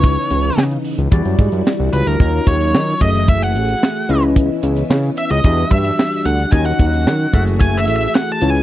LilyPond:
<<
  \new Staff \with { instrumentName = "Lead electric guitar" } { \time 4/4 \key ges \major \tempo 4 = 111 des''4~ des''16 r2 r16 b'16 bes'16~ | bes'8 des''4 ees''8 fes''16 ges''4. r16 | r4. fes''16 ees''8. e''4 fis''8 | aes''16 ges''4. r16 \tuplet 3/2 { aes''8 fes''8 fes''8 ges''8 a''8 aes''8 } | }
  \new Staff \with { instrumentName = "Tine electric piano" } { \time 4/4 \key ges \major <fes des' ees' ces''>2 <g e' fis' d''>2 | <ges ees' f' des''>4. <a ges' aes' fes''>2 <des' fes' ces'' ees''>8~ | <des' fes' ces'' ees''>2 <d' fis' g' e''>2 | <des' ees' ges' ees''>4. <a ges' aes' fes''>2 <des' fes' ces'' des''>8 | }
  \new Staff \with { instrumentName = "String machine" } { \time 4/4 \key ges \major <des fes ces' ees'>2 <e g d' fis'>2 | <ees ges des' f'>4. <fes a ges' aes'>2 <fes ces' des' fes'>8~ | <fes ces' des' fes'>2 <e g d' fis''>2 | <ees ges des' ges'>4. <fes a ges' aes'>2 <fes ces' des' fes'>8 | }
  \new Staff \with { instrumentName = "Analog synth bass" } { \clef bass \time 4/4 \key ges \major des,8 des,8 des8 r16 des,16 e,16 fis,16 aes,16 fis,16 r16 c,16 des,16 d,16 | ees,8 ees,8 ees8 ges,,4 a,,8 r8 des,8~ | des,8 des,8 des8 r16 des,16 e,8 g,8 r8 d,8 | ees,8 ees,8 ees8 ges,,4 a,,8 r8 des,8 | }
  \new DrumStaff \with { instrumentName = "Drums" } \drummode { \time 4/4 <hh bd>8 hh16 hh16 <hc sn>16 hh16 hho16 hh16 <hh bd>16 hh16 <hh bd>16 hh16 <hc sn>8 hh16 hh16 | <hh bd>8 <hh bd>16 hh16 <hc sn>8 <hh bd>16 hh16 <hh bd>16 hh16 hh16 hh16 <hc sn>16 hh16 hh16 hh16 | <hh bd>8 hh16 hh16 <hc sn>16 hh16 hh16 hh16 <hh bd>16 hh16 <hh bd>16 hh16 <hc sn>16 hh16 hh16 hh16 | <hh bd>16 hh16 <hh bd>16 hh16 <hc sn>8 <hh bd>16 hh16 <hh bd>8 hh16 hh16 <hc sn>16 hh16 hh16 hh16 | }
>>